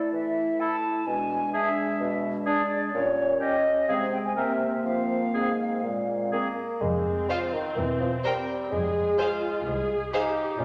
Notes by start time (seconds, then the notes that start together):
Already playing: A3 E4 D5
0.13 E3 E5
0.60 E4 A4 A5
1.06 B2 G#3 D4 G#5
1.53 D4 G#4 E5
2.01 B2
2.46 D4 G#4 D5
2.94 A#2 G3 C#4 C#5
3.40 C#4 G4 D#5
3.88 C3 G#3 C4 G#4 F5
4.13 G5
4.25 G#5
4.36 C3 A#3 C4 A#4 E5
4.85 F3 F5
5.34 G#2 C4 G#4
5.83 A#2 G#3
6.32 A#3 C4 G#4
6.82 F1 F2 G#3 C4
7.29 F3 F4 C5 F5
7.53 D#3
7.77 E1 E2 E3
8.00 F3
8.24 G3 A#4 C5 G5
8.72 F1 F2 G#3 G#4
9.19 F4 G#4 C5 F5
9.66 C2 G#4
10.13 D#4 G4 G#4 C5 F5
10.60 A#1 A#2 C#4 F4